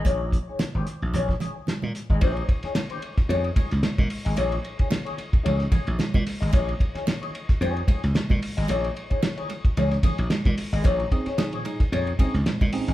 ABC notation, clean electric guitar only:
X:1
M:4/4
L:1/16
Q:"Swing 16ths" 1/4=111
K:Bbm
V:1 name="Clean electric guitar"
[EAd] z2 [EAd] z [EAd] z2 [EAd] z [EAd] z4 [EAe] | [EAd] z2 [EAd] z [EAd] z2 [EAd] z [EAd] z4 [EAe] | [EAd] z2 [EAd] z [EAd] z2 [EAd] z [EAd] z4 [EAe] | [EAd] z2 [EAd] z [EAd] z2 [EAd] z [EAd] z4 [EAe] |
[EAd] z2 [EAd] z [EAd] z2 [EAd] z [EAd] z4 [EAe] | [EAd] z2 [EAd] z [EAd] z2 [EAd] z [EAd] z4 [EAe] |]